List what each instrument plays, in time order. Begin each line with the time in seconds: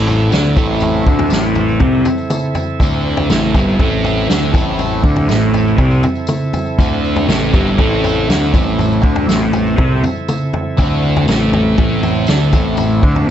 Already playing: picked electric bass A1, distorted electric guitar A2 A3, tonewheel organ C4 E4 A4 E5
0.07 floor tom, tambourine
0.20 tambourine
0.32 picked electric bass D2, distorted electric guitar D3 D4, snare, tambourine
0.57 picked electric bass A1, distorted electric guitar A2 A3, kick, floor tom, tambourine
0.80 floor tom, tambourine
0.94 tambourine
1.07 picked electric bass D2, distorted electric guitar D3 D4, kick
1.19 floor tom
1.30 picked electric bass A1, distorted electric guitar A2 A3, snare, tambourine
1.44 tambourine
1.55 floor tom, tambourine
1.69 tambourine
1.80 picked electric bass C2, distorted electric guitar C3 C4, kick, floor tom
2.05 floor tom, tambourine
2.18 tambourine
2.30 mid tom, tambourine
2.55 floor tom, tambourine
2.80 picked electric bass D2, distorted electric guitar D3 D4, kick, floor tom, tambourine
2.93 tambourine
3.17 floor tom
3.30 picked electric bass A1, distorted electric guitar A2 A3, snare, mid tom, tambourine
3.54 picked electric bass G1, distorted electric guitar G2 G3, kick, floor tom, tambourine
3.69 tambourine
3.79 picked electric bass A1, distorted electric guitar A2 A3, kick, floor tom
4.04 floor tom, tambourine
4.18 tambourine
4.28 picked electric bass D2, distorted electric guitar D3 D4, snare, tambourine
4.44 tambourine
4.53 picked electric bass A1, distorted electric guitar A2 A3, kick, floor tom, tambourine
4.79 floor tom, tambourine
4.92 tambourine
5.04 picked electric bass D2, distorted electric guitar D3 D4, kick
5.16 floor tom
5.29 picked electric bass A1, distorted electric guitar A2 A3, snare, tambourine
5.42 tambourine
5.54 floor tom, tambourine
5.67 tambourine
5.78 picked electric bass C2, distorted electric guitar C3 C4, kick, floor tom, tambourine
5.91 tambourine
6.03 floor tom, tambourine
6.15 tambourine
6.27 mid tom, tambourine
6.42 tambourine
6.53 floor tom, tambourine
6.66 tambourine
6.78 picked electric bass D2, distorted electric guitar D3 D4, kick, floor tom, tambourine
6.91 tambourine
7.04 tambourine
7.16 floor tom, tambourine
7.27 picked electric bass A1, distorted electric guitar A2 A3, snare, mid tom, tambourine
7.53 picked electric bass G1, distorted electric guitar G2 G3, kick, floor tom, tambourine
7.67 tambourine
7.78 picked electric bass A1, distorted electric guitar A2 A3, kick, floor tom
8.04 floor tom, tambourine
8.18 tambourine
8.29 picked electric bass D2, distorted electric guitar D3 D4, snare, tambourine
8.43 tambourine
8.53 picked electric bass A1, distorted electric guitar A2 A3, kick, floor tom, tambourine
8.79 floor tom, tambourine
8.92 tambourine
9.02 picked electric bass D2, distorted electric guitar D3 D4, kick
9.16 floor tom
9.27 picked electric bass A1, distorted electric guitar A2 A3, snare, tambourine
9.42 tambourine
9.53 floor tom, tambourine
9.66 tambourine
9.77 picked electric bass C2, distorted electric guitar C3 C4, kick, floor tom
10.04 floor tom, tambourine
10.16 tambourine
10.28 mid tom, tambourine
10.41 tambourine
10.53 floor tom
10.77 picked electric bass D2, distorted electric guitar D3 D4, kick, floor tom, tambourine
10.91 tambourine
11.16 floor tom
11.27 picked electric bass A1, distorted electric guitar A2 A3, snare, mid tom, tambourine
11.53 floor tom
11.77 picked electric bass A1, distorted electric guitar A2 A3, kick, floor tom
12.03 floor tom, tambourine
12.16 tambourine
12.27 picked electric bass D2, distorted electric guitar D3 D4, snare, tambourine
12.52 picked electric bass A1, distorted electric guitar A2 A3, kick, floor tom, tambourine
12.77 floor tom, tambourine
12.91 tambourine
13.03 picked electric bass D2, distorted electric guitar D3 D4, kick
13.16 floor tom
13.27 picked electric bass A1